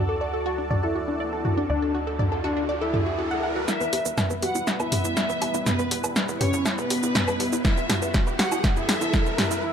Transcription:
Already playing: analog synth bass D2, analog synth pad F#4 A4 D5 A5, riser
0.09 synth arpeggio sound A4
0.21 synth arpeggio sound D5
0.34 synth arpeggio sound A4
0.46 synth arpeggio sound F#4, analog synth lead F#4
0.58 synth arpeggio sound D4
0.71 synth arpeggio sound D5, mid tom
0.83 analog synth lead E4, synth arpeggio sound A4
0.95 synth arpeggio sound F#4
1.08 synth arpeggio sound D4
1.20 synth arpeggio sound D5
1.33 synth arpeggio sound A4
1.45 synth arpeggio sound F#4, mid tom
1.57 synth arpeggio sound D4
1.70 analog synth bass D2, analog synth lead D4, synth arpeggio sound D5
1.82 synth arpeggio sound A4
1.95 synth arpeggio sound F#4
2.07 synth arpeggio sound A4
2.19 synth arpeggio sound D5, mid tom
2.32 synth arpeggio sound A4
2.44 analog synth lead D4, synth arpeggio sound F#4
2.57 synth arpeggio sound D4
2.69 synth arpeggio sound D5
2.81 analog synth lead E4, synth arpeggio sound A4
2.94 synth arpeggio sound A4, mid tom
3.06 synth arpeggio sound F#4
3.19 synth arpeggio sound F#4
3.31 synth arpeggio sound F#5
3.43 synth arpeggio sound F#5
3.56 synth arpeggio sound F#4
3.68 analog synth pad G3 B3 E4 B4, analog synth lead E4, violin section E5, synth arpeggio sound E5, snare, riser, shaker
3.81 analog synth bass E2, synth arpeggio sound B4, shaker
3.93 analog synth bass E2, synth arpeggio sound G4, open hi-hat
4.05 analog synth bass E2, synth arpeggio sound B4, shaker
4.18 synth arpeggio sound E5, snare, mid tom, low woodblock, shaker
4.30 analog synth bass E2, synth arpeggio sound B4, shaker
4.42 analog synth bass E2, analog synth lead F#4, synth arpeggio sound G4, violin section F#5, open hi-hat
4.55 analog synth bass E2, synth arpeggio sound E4, shaker
4.67 synth arpeggio sound E5, snare, shaker
4.80 analog synth bass E2, analog synth lead E4, synth arpeggio sound B4, violin section E5, low woodblock, shaker
4.92 analog synth bass E2, synth arpeggio sound G4, mid tom, open hi-hat
5.05 analog synth bass E2, synth arpeggio sound E4, shaker
5.17 synth arpeggio sound E5, snare, shaker
5.29 analog synth bass E2, synth arpeggio sound B4, shaker
5.42 analog synth bass E2, synth arpeggio sound G4, open hi-hat, low woodblock
5.54 analog synth bass E2, synth arpeggio sound E4, shaker
5.66 analog synth lead B3, violin section B4, synth arpeggio sound E5, snare, mid tom, shaker
5.79 analog synth bass E2, synth arpeggio sound B4, shaker
5.91 analog synth bass E2, synth arpeggio sound G4, open hi-hat
6.04 analog synth bass E2, synth arpeggio sound B4, low woodblock, shaker
6.16 synth arpeggio sound E5, snare, shaker
6.29 analog synth bass E2, synth arpeggio sound B4, shaker
6.41 analog synth bass E2, analog synth lead C#4, synth arpeggio sound G4, violin section C#5, mid tom, open hi-hat
6.53 analog synth bass E2, synth arpeggio sound E4, shaker
6.66 synth arpeggio sound E5, snare, low woodblock, shaker
6.78 analog synth bass E2, analog synth lead B3, synth arpeggio sound B4, violin section B4, shaker
6.90 analog synth bass E2, synth arpeggio sound G4, open hi-hat
7.03 analog synth bass E2, synth arpeggio sound E4, shaker
7.15 synth arpeggio sound E5, snare, mid tom, shaker
7.28 analog synth bass E2, synth arpeggio sound B4, low woodblock, shaker
7.40 analog synth bass E2, synth arpeggio sound G4, open hi-hat
7.53 analog synth bass E2, synth arpeggio sound E4, shaker
7.65 analog synth lead E4, synth arpeggio sound E5, violin section E5, kick, snare, shaker
7.77 analog synth bass E2, synth arpeggio sound B4, shaker
7.90 analog synth bass E2, synth arpeggio sound G4, snare, mid tom, open hi-hat, low woodblock
8.02 analog synth bass E2, synth arpeggio sound B4, shaker
8.14 synth arpeggio sound E5, kick, snare, shaker
8.27 analog synth bass E2, synth arpeggio sound B4, shaker
8.39 analog synth bass E2, analog synth lead F#4, synth arpeggio sound G4, violin section F#5, snare, open hi-hat
8.52 analog synth bass E2, synth arpeggio sound E4, low woodblock, shaker
8.64 synth arpeggio sound E5, kick, snare, mid tom, shaker
8.77 analog synth bass E2, analog synth lead E4, synth arpeggio sound B4, violin section E5, shaker
8.89 analog synth bass E2, synth arpeggio sound G4, snare, open hi-hat
9.01 analog synth bass E2, synth arpeggio sound E4, shaker
9.14 synth arpeggio sound E5, kick, snare, low woodblock, shaker
9.26 analog synth bass E2, synth arpeggio sound B4, shaker
9.38 analog synth bass E2, synth arpeggio sound G4, snare, mid tom, open hi-hat
9.51 analog synth bass E2, synth arpeggio sound E4, shaker
9.63 analog synth lead E4

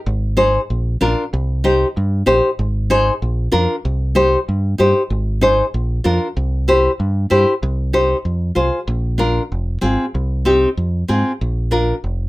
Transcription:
0.06 fingered electric bass G#1
0.37 nylon-string guitar D#4 G#4 C5
0.70 fingered electric bass A#1
1.01 fingered electric bass A#1, nylon-string guitar D4 F4 A#4
1.33 fingered electric bass C2
1.64 nylon-string guitar D#4 G4 C5
1.97 fingered electric bass G2
2.26 fingered electric bass A#1, nylon-string guitar D#4 G4 C5
2.59 fingered electric bass G#1
2.90 nylon-string guitar D#4 G#4 C5
3.22 fingered electric bass A#1
3.52 fingered electric bass F2, nylon-string guitar D4 F4 A#4
3.85 fingered electric bass C2
4.15 nylon-string guitar D#4 G4 C5
4.49 fingered electric bass G2
4.78 fingered electric bass G2, nylon-string guitar D#4 G4 C5
5.10 fingered electric bass G#1
5.41 nylon-string guitar D#4 G#4 C5
5.74 fingered electric bass A#1
6.04 fingered electric bass F2, nylon-string guitar D4 F4 A#4
6.37 fingered electric bass C2
6.68 nylon-string guitar E4 G4 C5
7.00 fingered electric bass G2
7.30 fingered electric bass G2, nylon-string guitar E4 G4 C5
7.63 fingered electric bass C2
7.93 nylon-string guitar D#4 G4 C5
8.25 fingered electric bass F2
8.55 fingered electric bass C2, nylon-string guitar F4 G#4 C5
8.88 fingered electric bass A#1
9.18 nylon-string guitar D4 F4 A#4
9.52 fingered electric bass F1
9.81 fingered electric bass G#1, nylon-string guitar C4 F4 G#4
10.15 fingered electric bass C2
10.45 nylon-string guitar C4 D#4 G4
10.77 fingered electric bass F2
11.08 fingered electric bass G#2, nylon-string guitar C4 F4 G#4
11.41 fingered electric bass A#1
11.71 nylon-string guitar D4 F4 A#4
12.04 fingered electric bass F1

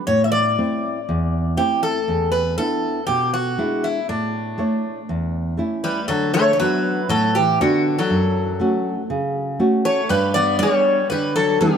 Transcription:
0.07 nylon-string guitar A2, bouzouki C#5
0.24 bouzouki E5
0.32 bouzouki D5
0.58 nylon-string guitar A3 C4 E4
1.09 nylon-string guitar E2
1.57 nylon-string guitar A3 C4 E4, bouzouki G4
1.83 bouzouki A4
2.08 nylon-string guitar E2
2.32 bouzouki B4
2.58 nylon-string guitar B3 D4 E4, bouzouki A4
3.07 nylon-string guitar B2, bouzouki G4
3.34 bouzouki F#4
3.58 nylon-string guitar G#3 D4 E4
3.84 bouzouki E4
4.09 nylon-string guitar A2, bouzouki D4
4.58 nylon-string guitar A3 E4 C#5
5.09 nylon-string guitar E2
5.57 nylon-string guitar A3 C#4 E4
5.84 bouzouki G3 B4
6.08 nylon-string guitar D3, bouzouki F#3 A4
6.34 bouzouki A3 C#5
6.53 bouzouki A3 C#5
6.60 bouzouki F#3 B4, nylon-string guitar B3 D4 F#4
7.09 nylon-string guitar A2, bouzouki F#3 A4
7.35 bouzouki E3 G4
7.61 bouzouki D3 F#4, nylon-string guitar B3 D4 F#4
7.99 bouzouki F#3 A4
8.10 nylon-string guitar F#2
8.60 nylon-string guitar A3 C#4 F#4
9.10 nylon-string guitar C#3
9.60 nylon-string guitar A3 C#4 F#4
9.85 bouzouki A3 C#5
10.09 nylon-string guitar G2, bouzouki G3 B4
10.34 bouzouki B3 D5
10.59 nylon-string guitar G3 B3 D4, bouzouki G3 C#5
11.10 nylon-string guitar D3, bouzouki G3 B4
11.36 bouzouki F#3 A4
11.61 bouzouki D3 G4, nylon-string guitar G3 B3 D4

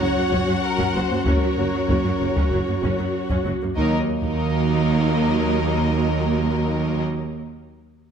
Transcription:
Already playing: french horn section F#3 C#4, viola section F#4, violin section C#5
0.01 double bass section F#1, tuba F#1, cello section F#2, viola section F#3, violin section F#5
0.17 cello section F#2, viola section A#3
0.31 double bass section F#1, tuba F#1, cello section F#2, viola section C#4, taiko
0.47 cello section F#2, viola section F#3
0.64 violin section A#4
0.78 cello section F#2, viola section C#4, taiko
0.95 tuba F#1, double bass section F#1, cello section F#2, viola section F#3, violin section C5
1.10 cello section F#2, viola section A#3
1.25 double bass section F#1, tuba F#1, cello section F#2, viola section C#4, violin section A#4 C#5, taiko
1.42 cello section F#2, viola section F#3
1.57 double bass section F#1, tuba F#1, cello section F#2, viola section A#3
1.73 cello section F#2, viola section F#3
1.89 double bass section F#1, tuba F#1, cello section F#2, viola section C#4, taiko
2.04 cello section F#2, viola section F#3
2.20 double bass section F#1, tuba F#1, cello section F#2, viola section A#3
2.36 cello section F#2, viola section C#4, taiko
2.51 tuba F#1, double bass section F#1, cello section F#2, viola section F#3
2.68 cello section F#2, viola section A#3
2.82 double bass section F#1, tuba F#1, cello section F#2, viola section C#4, taiko
2.99 cello section F#2, viola section F#3
3.30 cello section F#2, viola section C#4, taiko
3.44 double bass section F#1, tuba F#1, cello section F#2, viola section F#3
3.61 cello section F#2, viola section A#3
3.76 double bass section D#2, tuba D#2, cello section D#2, viola section F#3 A#3, french horn section F#3 A#3, violin section D#4 A#4 D#5, taiko
4.22 double bass section D#2, tuba D#2, cello section D#2, viola section F#3 A#3, violin section D#4 A#4 D#5, taiko

